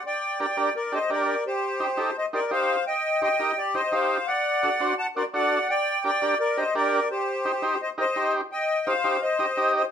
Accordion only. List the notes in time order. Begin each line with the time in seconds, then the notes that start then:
0.06 D5 G5
0.41 D5 G5
0.76 A#4 D5
0.94 C5 D#5
1.12 A#4 D5
1.47 G4 C5
2.18 C5 D#5
2.34 A#4 D5
2.52 C5 F5
2.87 D#5 G5
3.23 D#5 G5
3.58 G4 D5
3.75 C5 D#5
3.93 C5 F5
4.27 D5 F#5
4.98 F#5 A5
5.16 A#4 D5
5.34 D5 F#5
5.70 D5 G5
6.05 D5 G5
6.40 A#4 D5
6.57 C5 D#5
6.76 A#4 D5
7.11 G4 C5
7.82 C5 D#5
8.00 C5 D#5
8.52 D#5 G5
8.87 C5 F5
9.22 C5 D#5
9.76 C5 D#5